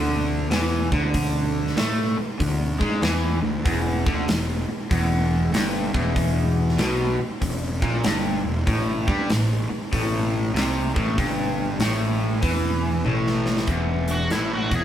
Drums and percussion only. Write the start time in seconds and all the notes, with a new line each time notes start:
0.51 snare, open hi-hat
0.92 kick
1.14 kick, open hi-hat
1.67 snare
1.77 snare, open hi-hat
2.40 kick, open hi-hat
2.81 kick
3.02 snare, open hi-hat
3.66 kick, open hi-hat
4.06 kick
4.28 snare, open hi-hat
4.91 kick, open hi-hat
5.54 snare, open hi-hat
5.94 kick
6.16 kick, open hi-hat
6.69 snare
6.78 snare, open hi-hat
7.42 kick, open hi-hat
7.82 kick
8.04 snare, open hi-hat
8.67 kick, open hi-hat
9.08 kick
9.30 snare, open hi-hat
9.93 kick, open hi-hat
10.56 snare, open hi-hat
10.96 kick
11.18 kick, open hi-hat
11.80 snare, open hi-hat
12.42 kick, open hi-hat
13.05 high tom
13.27 snare
13.46 snare
13.57 snare
13.67 kick, closed hi-hat
14.08 closed hi-hat
14.31 snare, closed hi-hat
14.71 kick, closed hi-hat